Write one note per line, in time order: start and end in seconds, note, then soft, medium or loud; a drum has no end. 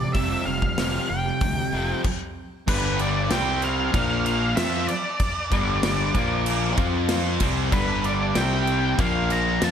0.00 0.12 F2 medium
0.00 0.12 C3 medium
0.00 0.12 F3 medium
0.00 0.13 G3 medium
0.00 0.15 C4 medium
0.00 0.16 G4 medium
0.00 0.13 D5 medium
0.13 0.35 F1 loud
0.13 0.45 F2 medium
0.13 0.45 C3 medium
0.13 0.44 F3 loud
0.13 0.45 F3 medium
0.13 0.45 G3 loud
0.13 0.46 C4 loud
0.13 0.47 G4 loud
0.13 0.45 E5 medium
0.13 kick loud
0.13 open hi-hat medium
0.45 0.66 F1 medium
0.45 0.75 F2 medium
0.45 0.75 C3 medium
0.45 0.76 F3 medium
0.45 0.77 G3 medium
0.45 0.78 C4 medium
0.45 0.79 G4 medium
0.45 1.11 F5 loud
0.62 kick medium
0.77 0.98 F1 medium
0.77 1.08 F2 medium
0.77 1.08 C3 loud
0.77 1.08 F3 medium
0.77 1.09 F3 loud
0.77 0.94 G3 medium
0.77 0.93 C4 medium
0.77 0.92 G4 loud
0.77 snare loud
0.77 open hi-hat medium
0.93 1.08 G3 medium
0.93 1.08 C4 medium
0.93 1.09 G4 medium
1.09 1.30 F1 medium
1.09 1.39 F2 medium
1.09 1.39 C3 medium
1.09 2.01 G5 loud
1.09 muted steel-string acoustic guitar stroke soft
1.24 1.58 G3 medium
1.24 1.56 C4 medium
1.24 1.55 G4 medium
1.41 1.61 D2 medium
1.41 1.70 F2 medium
1.41 1.70 C3 medium
1.41 kick loud
1.41 open hi-hat medium
1.56 1.90 G3 medium
1.56 1.89 C4 medium
1.56 1.87 G4 medium
1.73 1.93 F1 medium
1.73 2.03 F2 loud
1.73 2.03 C3 loud
1.73 2.04 F3 loud
1.90 2.04 G3 medium
1.90 2.03 C4 medium
2.04 kick loud
2.04 crash loud
2.67 3.27 G1 loud
2.67 3.30 G2 medium
2.67 3.30 D3 medium
2.67 3.30 G3 loud
2.67 2.98 B4 loud
2.67 kick loud
2.67 crash loud
2.67 crash medium
2.99 3.30 D5 medium
2.99 crash medium
3.30 3.90 C2 medium
3.30 3.93 C3 loud
3.30 3.94 G3 loud
3.30 3.94 C4 loud
3.30 3.64 G5 loud
3.30 snare loud
3.30 crash medium
3.62 4.25 F5 loud
3.62 crash medium
3.93 4.53 A#1 loud
3.93 4.56 A#2 loud
3.93 4.55 F3 loud
3.93 4.56 A#3 loud
3.93 kick loud
3.93 crash medium
4.26 4.56 F5 loud
4.26 crash medium
4.56 4.87 F2 medium
4.56 4.87 F3 medium
4.56 4.88 C4 medium
4.56 4.88 F4 loud
4.56 4.88 E5 loud
4.56 snare loud
4.56 crash loud
4.88 6.73 D5 medium
4.88 crash medium
5.20 kick loud
5.20 crash medium
5.51 6.11 G1 loud
5.51 6.13 G2 medium
5.51 6.14 D3 medium
5.51 6.14 G3 loud
5.51 kick loud
5.51 crash medium
5.83 snare loud
5.83 crash loud
6.14 6.74 A#1 loud
6.14 6.77 A#2 loud
6.14 6.76 F3 loud
6.14 6.77 A#3 loud
6.14 kick loud
6.14 crash medium
6.46 crash loud
6.77 7.37 F2 loud
6.77 7.40 F3 loud
6.77 7.40 C4 loud
6.77 7.40 F4 loud
6.77 kick loud
6.77 crash medium
7.09 snare loud
7.09 crash loud
7.40 7.70 C2 loud
7.40 7.71 C3 medium
7.40 7.72 G3 medium
7.40 7.72 C4 loud
7.40 kick loud
7.40 crash loud
7.71 8.31 G1 loud
7.71 8.34 G2 medium
7.71 8.34 D3 loud
7.71 8.34 G3 loud
7.71 8.05 B4 medium
7.71 kick loud
7.71 crash medium
8.04 8.37 D5 medium
8.04 crash medium
8.34 8.95 C2 loud
8.34 8.97 C3 loud
8.34 8.98 G3 loud
8.34 8.98 C4 loud
8.34 9.00 G5 loud
8.34 snare loud
8.34 crash medium
8.67 crash medium
8.98 9.58 A#1 medium
8.98 9.61 A#2 loud
8.98 9.60 F3 loud
8.98 9.61 A#3 loud
8.98 9.32 F5 loud
8.98 kick loud
8.98 crash medium
9.30 9.61 A#5 loud
9.30 crash medium
9.62 9.71 F2 loud
9.62 9.71 F3 medium
9.62 9.71 C4 loud
9.62 9.71 F4 loud
9.62 9.71 A5 loud
9.62 snare loud
9.62 crash medium